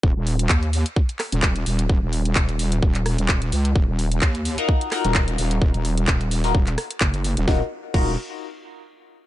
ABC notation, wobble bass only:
X:1
M:4/4
L:1/16
Q:"Swing 16ths" 1/4=129
K:Ebm
V:1 name="Wobble bass" clef=bass
E,,, E,,,3 E,,3 z4 E,,,3 E,,,2 | E,,, E,,,3 E,,,4 E,,,3 E,,,3 D,,2 | E,,, E,,,3 E,,3 z4 E,,,3 E,,,2 | E,,, E,,,3 E,,,4 E,,,2 z2 G,,,3 E,,, |
E,,, z3 E,,,2 z8 z2 |]